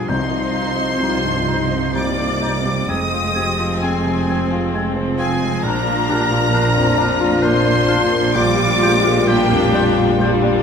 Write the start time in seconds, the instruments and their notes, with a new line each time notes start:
Already playing: grand piano F2 G3 F4 D5, viola section F3, french horn section F3, oboe G#4
0.08 grand piano C2, double bass section C2, cello section C3, timpani C3, viola section D#4, clarinet D#4, french horn section D#4, oboe C5, violin section C6, flute G6
0.32 grand piano D#4
0.54 clarinet D#4, grand piano F4, flute G6
0.77 grand piano D#4
1.01 grand piano G3, clarinet D#4, viola section F4, flute G6
1.24 grand piano G2
1.48 clarinet D#4, viola section D#4, grand piano C5, flute G6
1.71 grand piano D#4
1.94 grand piano G3, viola section A#3 D5, clarinet D#4, oboe D5, violin section D6, flute G6
2.18 grand piano C5
2.42 clarinet D#4, grand piano D#4, flute G6
2.66 grand piano G3
2.88 double bass section F1, grand piano F2, cello section F2, french horn section G#3 C4, viola section G#3 C4, clarinet C4, oboe D#5, violin section D#6, flute G#6
3.13 grand piano F4
3.35 viola section F3, clarinet C4, grand piano G4, flute G#6
3.59 grand piano F4
3.82 grand piano G#3, clarinet C4, oboe G#4, violin section G#5, flute G#6
4.05 grand piano C3
4.29 clarinet C4, grand piano C5, flute G#6
4.52 grand piano F4
4.74 grand piano G#3, clarinet C4, flute G#6
4.96 grand piano C5
5.18 clarinet C4, grand piano F4, oboe G#4, violin section G#5, flute G#6
5.41 grand piano G#3
5.63 grand piano A#1, double bass section A#1, cello section A#2, french horn section F3 D4, viola section D4, clarinet D4, oboe A#4, violin section A#5, flute F6
5.87 grand piano F4
6.08 clarinet D4, grand piano G4, flute F6
6.31 grand piano F4
6.52 grand piano A#3, clarinet D4, viola section F4, flute F6
6.76 grand piano F2
6.97 clarinet D4, grand piano D5, flute F6
7.20 grand piano F4
7.42 grand piano A#3, clarinet D4, oboe C5, violin section C6, flute F6
7.66 grand piano D5
7.88 clarinet D4, grand piano F4, flute F6
8.12 grand piano A#3
8.35 grand piano A#1, viola section G3 F4, french horn section F4 G4, clarinet F4, oboe D5, violin section D6, flute G6
8.58 grand piano F4
8.81 viola section G#3, clarinet F4, grand piano G4, flute G6
9.04 grand piano F4
9.27 grand piano G3, viola section A#3 D4, clarinet F4, oboe G4, violin section G5, flute G6
9.51 grand piano F2
9.74 viola section G3, clarinet F4, grand piano D5, flute G6
9.98 grand piano F4
10.20 grand piano G3, viola section D4, clarinet F4, flute G6
10.44 grand piano D5